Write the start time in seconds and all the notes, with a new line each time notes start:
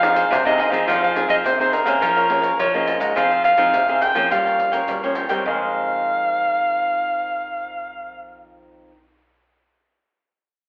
Already playing: F3 F5
0.01 C4 D#4 G#4, muted cavaquinho stroke, pandeiro, tamborim, maracas
0.14 G#4 C5 F5, pandeiro, maracas
0.31 C3 C5, pandeiro, tamborim, maracas, surdo
0.45 C3 C4 D#4 G#4 C5 D#5 F5, pandeiro, maracas
0.57 D#3 D#4 G#4 C5 F5, pandeiro
0.70 F3 C4 D#4 G#4 C5 D#5 F5, pandeiro, maracas
0.86 F3 D#4 G#4 C5 F5, pandeiro, maracas, surdo
1.02 G#4 C5 F5, pandeiro, maracas
1.15 C4 D#4 G#4, muted cavaquinho stroke, pandeiro, maracas
1.28 F3 G#4 C5 D#5 F5, pandeiro, maracas
1.44 C3 C5, pandeiro, maracas, surdo
1.59 C4 D#4 G#4 C5 F5, pandeiro, maracas
1.71 D#4 G#4 A#4 C5 F5, pandeiro, maracas
1.85 C3 A#3 C#4 G#4 C5 F5, pandeiro, maracas
2.01 F3 F4 A#4 C#5 F5, pandeiro, maracas, surdo
2.16 A#4 C#5 F5, pandeiro, maracas
2.29 A#3 C#4 G#4, muted cavaquinho stroke, pandeiro
2.42 A#4 C#5 F5, pandeiro, maracas
2.59 F3 C#5, pandeiro, maracas, surdo
2.74 A#3 C#4 G#4 A#4 C#5 D#5 F5, pandeiro, maracas
2.86 F4 A#4 C#5 F5, pandeiro, maracas
3.00 G#2 A#4 C#5 D#5 F5, pandeiro, maracas
3.15 F3 C4 D#4 G#4 C5 F5, pandeiro, maracas, surdo
3.30 G#4 C5 F5, pandeiro, maracas
3.44 F5, muted cavaquinho stroke, pandeiro, maracas
3.57 F3 C4 D#4 G#4 C5 F5, pandeiro, maracas
3.73 C3, pandeiro, maracas, surdo
3.88 C4 D#4 G#4 C5 F5, pandeiro, maracas
4.01 D#4 G#4 C5 F5 G5, pandeiro, maracas
4.15 F3 A#3 C#4 G#4 C5 F5, pandeiro, maracas
4.30 G2 G3 F4 A#4 C#5 F5 G5, pandeiro, maracas, surdo
4.45 A#4 C#5 G5, pandeiro, maracas
4.59 muted cavaquinho stroke, pandeiro
4.72 F3 A#3 C#4 A#4 C#5 G5, pandeiro, maracas
4.88 G2 G3, pandeiro, maracas, surdo
5.03 F3 A#3 C#4 A#4 C#5 G5, pandeiro, maracas
5.15 F4 A#4 C#5 G5, pandeiro, maracas
5.29 D#3 G3 G#3 C4 A#4 C#5 G5, pandeiro, maracas
5.41 F2, surdo
5.46 F2 D#3 D#4 G#4 C5 F5
5.52 G#3
5.56 C4